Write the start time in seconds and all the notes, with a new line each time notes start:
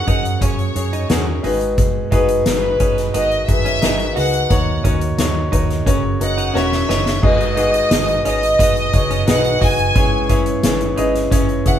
Already playing: C#3 C#4 F#4 G#4 A#4 C#5 F#5
0.06 F#2 C#4 D#4 F#4 G#4 A#4, kick, closed hi-hat
0.25 closed hi-hat
0.40 F#2 C#4 F#4 G#4 C#5, kick, closed hi-hat
0.59 closed hi-hat
0.75 F#2 C#4 F#4 G#4 C#5, closed hi-hat
0.93 D#4, closed hi-hat
1.09 E2 C#4 F#4 G#4 A#4, snare, closed hi-hat
1.43 G#1 G#2 D#3 D#4 F#4 G#4 B4, open hi-hat
1.61 closed hi-hat
1.78 kick, closed hi-hat
2.11 G#1 B3 D#4 F#4 G#4 B4, kick, closed hi-hat
2.29 closed hi-hat
2.45 G#1 D#4 F#4 G#4 B4, snare, closed hi-hat
2.80 G#1 C#4 D#4 F#4 G#4 B4, kick, closed hi-hat
2.97 snare, closed hi-hat
3.14 G#1 B3 D#4 F#4 G#4 A#4 D#5, closed hi-hat
3.31 closed hi-hat
3.48 G#1 D#4 F#4 G#4 B4 E5, kick, closed hi-hat
3.65 C#4, closed hi-hat
3.82 G#1 D#4 F#4 G#4 A#4, snare, closed hi-hat
4.00 closed hi-hat
4.16 C#2 D#4 F#4 G#4 B4 F#5, open hi-hat
4.34 closed hi-hat
4.49 D#2 A#2 D#4 F#4 A#4 C#5, kick, closed hi-hat
4.84 D#2 C#4 D#4 F#4 A#4 C#5, kick, closed hi-hat
5.01 closed hi-hat
5.18 D#2 D#4 F#4 A#4 C#5, snare, closed hi-hat
5.52 D#2 D#4 F#4 A#4 C#5, kick, closed hi-hat
5.70 snare, closed hi-hat
5.86 F#1 C#3 C#4 F#4 A#4 C#5, kick, closed hi-hat
6.20 F#1 C#4 F#4 A#4 D#5 F#5, closed hi-hat
6.38 D#4, closed hi-hat
6.54 E1 C#4 F#4 A#4 C#5 E5, snare
6.72 snare
6.88 F#1 C#4 D#4 F#4 A#4 C#5, snare
7.06 snare
7.22 G#1 G#2 D#3 D#4 F#4 G#4 B4 D#5, kick, crash
7.41 closed hi-hat
7.56 B3 D#4 F#4 G#4 B4 F#5, closed hi-hat
7.74 closed hi-hat
7.90 G#1 D#4 F#4 G#4 B4 D#5, snare, closed hi-hat
8.08 closed hi-hat
8.25 G#1 C#4 D#4 F#4 G#4 B4 D#5, closed hi-hat
8.43 closed hi-hat
8.59 G#1 B3 D#4 F#4 G#4 B4 D#5, kick, closed hi-hat
8.77 closed hi-hat
8.93 F#1 D#4 F#4 G#4 B4 C#5, kick, closed hi-hat
9.11 C#4, closed hi-hat
9.26 B1 D#4 F#4 G#4 B4 D#5 F#5, snare, closed hi-hat
9.45 closed hi-hat
9.61 F#1 D#4 F#4 G#4 B4 F#5 G#5, kick, open hi-hat
9.79 closed hi-hat
9.95 G#1 G#2 G#3 C#4 E4 G#4 B4 C#5, kick, closed hi-hat
10.29 C#4 E4 G#4 B4 C#5, kick, closed hi-hat
10.46 closed hi-hat
10.63 G#1 C#4 E4 G#4 B4 C#5, snare, closed hi-hat
10.81 closed hi-hat
10.97 G#1 C#4 D#4 E4 G#4 B4 D#5, closed hi-hat
11.15 snare, closed hi-hat
11.31 G#1 C#4 E4 G#4 B4 C#5, kick, closed hi-hat
11.49 closed hi-hat
11.65 F#1 C#4 E4 G#4 B4 E5 F#5, kick, closed hi-hat